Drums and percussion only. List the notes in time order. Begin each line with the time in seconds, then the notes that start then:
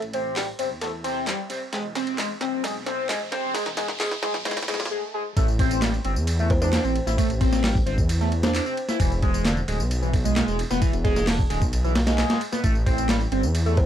0.02 ride
0.13 ride
0.36 snare, clap, open hi-hat
0.59 ride
0.81 snare, ride
1.04 ride
1.27 snare, clap, ride
1.50 ride
1.73 snare, ride
1.95 snare, ride
2.07 ride
2.18 snare, clap, ride
2.41 snare, ride
2.64 snare, ride
2.86 snare, ride
3.09 snare, clap, ride
3.32 snare, ride
3.55 snare, ride
3.66 snare, ride
3.77 snare, ride
3.88 snare
4.00 snare, clap, open hi-hat
4.11 snare
4.23 snare, ride
4.34 snare
4.45 snare, ride
4.51 snare, ride
4.57 snare, ride
4.62 snare, ride
4.68 snare, ride
4.74 snare
4.80 snare
4.85 snare
5.37 kick, ride, tambourine
5.48 tambourine
5.59 kick, ride
5.71 ride, tambourine
5.82 snare, clap, ride, tambourine
5.94 tambourine
6.05 ride
6.16 tambourine
6.27 ride, tambourine
6.39 tambourine
6.50 kick, ride
6.62 tambourine
6.73 snare, clap, ride, tambourine
6.85 tambourine
6.96 ride
7.07 snare, tambourine
7.18 kick, ride, tambourine
7.30 ride, tambourine
7.41 kick, ride
7.53 snare, tambourine
7.64 snare, clap, open hi-hat, tambourine
7.75 kick, tambourine
7.87 ride
7.98 kick, tambourine
8.09 ride, tambourine
8.21 tambourine
8.32 ride
8.43 snare, tambourine
8.55 clap, ride, tambourine
8.66 tambourine
8.77 ride
8.89 snare, tambourine
9.00 kick, ride, tambourine
9.12 tambourine
9.22 kick, ride
9.34 ride, tambourine
9.45 snare, clap, ride, tambourine
9.57 tambourine
9.68 ride
9.80 tambourine
9.91 ride, tambourine
10.03 tambourine
10.13 kick, ride
10.25 tambourine
10.36 snare, clap, ride, tambourine
10.48 tambourine
10.59 ride
10.71 snare, tambourine
10.82 kick, ride, tambourine
10.93 ride, tambourine
11.05 kick, ride
11.16 snare, tambourine
11.27 snare, clap, open hi-hat, tambourine
11.39 kick, tambourine
11.50 ride
11.62 kick, tambourine
11.73 ride, tambourine
11.84 tambourine
11.95 snare, ride
12.07 snare, ride, tambourine
12.18 snare, clap, ride, tambourine
12.30 snare, ride, tambourine
12.41 ride
12.52 snare, tambourine
12.64 kick, ride, tambourine
12.75 tambourine
12.86 kick, ride
12.98 ride, tambourine
13.09 snare, clap, ride, tambourine
13.21 tambourine
13.32 ride
13.43 tambourine
13.55 ride, tambourine
13.66 tambourine
13.77 kick, ride